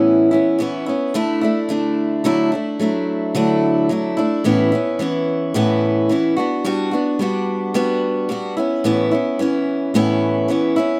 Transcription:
X:1
M:4/4
L:1/8
Q:"Swing 16ths" 1/4=109
K:D
V:1 name="Steel-string acoustic guitar"
[A,,E,B,CE] [B,CE] [E,B,CE] [B,CE] [D,A,DE] [A,DE] [D,A,DE]2 | [D,F,A,DE] [A,DE] [F,A,DE]2 [D,F,A,DE]2 [F,A,DE] [A,DE] | [A,,E,B,CE] [B,CE] [E,B,CE]2 [A,,E,B,CE]2 [E,B,CE] [B,DF] | [G,B,DF] [B,DF] [G,B,DF]2 [G,B,DF]2 [G,B,DF] [B,CE] |
[A,,E,B,CE] [B,CE] [E,B,CE]2 [A,,E,B,CE]2 [E,B,CE] [B,CE] |]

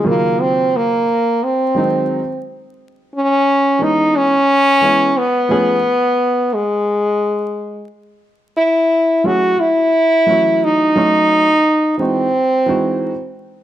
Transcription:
X:1
M:4/4
L:1/8
Q:"Swing 16ths" 1/4=88
K:C#m
V:1 name="French horn"
^A, ^B, A,2 B,3 z | z C2 D C3 B,- | B,3 G,4 z | z E2 F E3 D- |
D3 ^B,4 z |]
V:2 name="Upright piano"
[C,D,F,^A,^E]3 z2 [D,F,G,^B,D] z2 | z3 [E,G,B,CD] z2 [E,G,B,CE] z | [^E,A,B,CG] z6 z | z3 [F,A,CEG] z2 [E,F,A,CF]2 |
[F,A,CDF] z2 [E,G,^B,DF] z [E,G,B,DF] z2 |]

